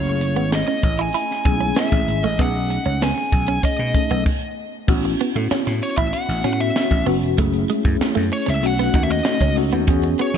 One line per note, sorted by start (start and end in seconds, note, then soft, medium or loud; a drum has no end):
0.00 0.37 F#1 medium
0.00 0.70 A3 medium
0.00 0.67 C#4 medium
0.00 0.68 E4 medium
0.00 0.68 G#4 medium
0.00 0.50 C#5 medium
0.04 shaker medium
0.21 muted clean electric guitar stroke soft
0.21 closed hi-hat medium
0.36 0.62 G#1 loud
0.36 0.46 B3 medium
0.36 shaker soft
0.51 1.01 D#5 medium
0.51 snare loud
0.51 closed hi-hat medium
0.51 shaker medium
0.67 0.77 C#4 medium
0.67 shaker soft
0.83 1.08 A1 medium
0.83 muted clean electric guitar stroke soft
0.83 kick medium
0.83 closed hi-hat medium
0.98 1.08 E4 medium
0.98 1.80 G#5 loud
0.98 shaker soft
1.13 1.24 E4 medium
1.13 closed hi-hat loud
1.13 shaker medium
1.29 snare soft
1.29 shaker soft
1.45 1.71 B1 medium
1.45 1.52 G#3 medium
1.45 2.04 C#4 medium
1.45 2.04 E4 medium
1.45 2.04 G#4 medium
1.45 muted clean electric guitar stroke soft
1.45 kick medium
1.45 closed hi-hat medium
1.45 shaker soft
1.51 2.07 A3 medium
1.61 1.70 C#4 medium
1.61 shaker soft
1.76 1.86 B3 medium
1.76 2.24 E5 medium
1.76 snare loud
1.76 closed hi-hat medium
1.76 shaker medium
1.92 2.09 A1 medium
1.92 muted clean electric guitar stroke soft
1.92 kick medium
1.92 shaker soft
2.07 2.20 G#1 medium
2.07 closed hi-hat medium
2.07 shaker soft
2.23 2.39 A1 medium
2.23 2.33 A3 medium
2.23 2.42 D#5 medium
2.23 shaker soft
2.39 2.77 B1 loud
2.39 3.16 A3 medium
2.39 2.49 B3 medium
2.39 3.16 C#4 medium
2.39 3.17 D#4 medium
2.39 3.17 G#4 medium
2.39 3.03 F#5 loud
2.39 kick loud
2.39 closed hi-hat medium
2.39 shaker medium
2.54 shaker soft
2.70 muted clean electric guitar stroke soft
2.70 closed hi-hat medium
2.70 shaker soft
2.86 3.11 C#2 medium
2.86 2.95 C#4 medium
2.86 shaker soft
3.00 3.12 B3 medium
3.00 3.61 G#5 medium
3.00 snare loud
3.00 closed hi-hat medium
3.00 shaker medium
3.16 muted clean electric guitar stroke soft
3.16 shaker soft
3.31 3.58 B1 medium
3.31 kick loud
3.31 closed hi-hat medium
3.31 shaker soft
3.48 3.58 C#4 medium
3.48 shaker soft
3.62 3.73 C#4 medium
3.62 4.23 D#5 medium
3.62 muted slap bass stroke soft
3.62 kick medium
3.62 closed hi-hat medium
3.62 shaker medium
3.78 3.92 B2 medium
3.78 muted clean electric guitar stroke soft
3.78 shaker soft
3.95 4.26 A3 medium
3.95 4.26 C#4 medium
3.95 4.27 D#4 medium
3.95 4.27 A4 medium
3.95 kick medium
3.95 closed hi-hat medium
3.95 shaker soft
4.11 4.23 B1 medium
4.11 4.20 B3 medium
4.11 shaker soft
4.26 kick loud
4.26 crash medium
4.87 5.13 A1 loud
4.87 5.65 B3 medium
4.87 5.66 C#4 medium
4.87 5.66 E4 medium
4.87 5.66 F#4 medium
4.87 kick loud
4.87 crash medium
4.87 shaker medium
5.04 muted clean electric guitar stroke soft
5.04 closed hi-hat medium
5.04 shaker medium
5.20 5.30 B3 medium
5.20 closed hi-hat medium
5.35 5.48 A2 loud
5.35 5.45 A3 medium
5.35 closed hi-hat soft
5.35 shaker soft
5.51 5.61 C#4 medium
5.51 muted slap bass stroke soft
5.51 snare loud
5.51 shaker medium
5.67 5.79 A2 medium
5.67 muted clean electric guitar stroke soft
5.67 snare soft
5.67 closed hi-hat medium
5.67 shaker soft
5.81 5.97 C#5 medium
5.81 open hi-hat medium
5.81 shaker soft
5.97 6.10 A1 medium
5.97 6.07 E4 medium
5.97 6.12 E5 medium
5.97 kick medium
5.97 closed hi-hat medium
5.97 shaker soft
6.12 6.52 F#5 loud
6.12 closed hi-hat loud
6.12 shaker medium
6.29 6.41 A1 medium
6.29 snare soft
6.29 closed hi-hat medium
6.29 shaker soft
6.44 6.70 A2 loud
6.44 6.83 B3 medium
6.44 6.54 C#4 medium
6.44 6.83 C#4 medium
6.44 6.84 E4 medium
6.44 6.84 F#4 medium
6.44 closed hi-hat medium
6.44 shaker soft
6.53 6.60 F#5 medium
6.60 7.04 E5 medium
6.60 closed hi-hat medium
6.60 shaker soft
6.76 snare loud
6.76 shaker medium
6.91 7.04 A1 medium
6.91 kick medium
6.91 closed hi-hat soft
6.91 shaker soft
7.06 7.23 F#1 medium
7.06 7.26 B3 medium
7.06 7.16 B3 medium
7.06 7.26 C#4 medium
7.06 7.26 E4 medium
7.06 7.26 F#4 medium
7.06 open hi-hat medium
7.06 shaker soft
7.23 7.35 E1 medium
7.23 closed hi-hat medium
7.23 shaker soft
7.38 7.64 F#1 loud
7.38 8.16 A3 medium
7.38 7.48 A3 medium
7.38 8.16 C#4 medium
7.38 8.16 E4 medium
7.38 8.16 G#4 medium
7.38 kick loud
7.38 closed hi-hat medium
7.38 shaker medium
7.54 closed hi-hat medium
7.54 shaker medium
7.70 7.79 G#3 medium
7.70 closed hi-hat medium
7.85 7.97 F#2 loud
7.85 muted clean electric guitar stroke soft
7.85 kick loud
7.85 closed hi-hat medium
7.85 shaker soft
8.00 muted slap bass stroke soft
8.00 snare loud
8.00 shaker medium
8.15 8.29 F#2 medium
8.15 8.25 A3 medium
8.15 snare soft
8.15 closed hi-hat medium
8.15 shaker soft
8.32 8.50 C#5 medium
8.32 muted clean electric guitar stroke soft
8.32 open hi-hat medium
8.32 shaker soft
8.46 8.62 C#2 medium
8.46 8.56 C#4 medium
8.46 8.65 E5 medium
8.46 snare soft
8.46 closed hi-hat medium
8.46 shaker soft
8.62 8.88 B1 loud
8.62 8.87 A3 medium
8.62 8.88 C#4 medium
8.62 8.88 D#4 medium
8.62 8.88 F#4 medium
8.62 9.05 F#5 loud
8.62 muted clean electric guitar stroke soft
8.62 closed hi-hat loud
8.62 shaker medium
8.78 8.89 B3 medium
8.78 snare soft
8.78 closed hi-hat medium
8.78 shaker medium
8.94 9.19 D#2 medium
8.94 9.33 A3 medium
8.94 9.33 C#4 medium
8.94 9.33 D#4 medium
8.94 9.04 D#4 medium
8.94 9.33 F#4 medium
8.94 kick loud
8.94 closed hi-hat medium
8.94 shaker soft
9.03 9.10 E5 medium
9.10 9.54 D#5 medium
9.10 closed hi-hat medium
9.10 shaker soft
9.25 snare loud
9.25 shaker medium
9.40 9.54 C#2 medium
9.40 9.51 C#4 medium
9.40 kick medium
9.40 closed hi-hat soft
9.40 shaker soft
9.55 9.69 C#2 medium
9.55 9.76 A3 medium
9.55 9.76 C#4 medium
9.55 9.76 D#4 medium
9.55 9.76 F#4 medium
9.55 muted clean electric guitar stroke soft
9.55 open hi-hat medium
9.55 shaker soft
9.72 9.88 D#2 medium
9.72 9.82 B3 medium
9.72 closed hi-hat medium
9.72 shaker soft
9.87 10.13 E2 loud
9.87 10.38 B3 medium
9.87 10.38 C#4 medium
9.87 10.38 F#4 medium
9.87 10.38 G#4 loud
9.87 kick loud
9.87 closed hi-hat medium
9.87 shaker medium
10.03 muted clean electric guitar stroke soft
10.03 closed hi-hat medium
10.03 shaker soft
10.19 10.29 B3 medium
10.19 10.38 C#5 medium
10.19 closed hi-hat medium
10.34 10.38 E3 loud
10.34 closed hi-hat soft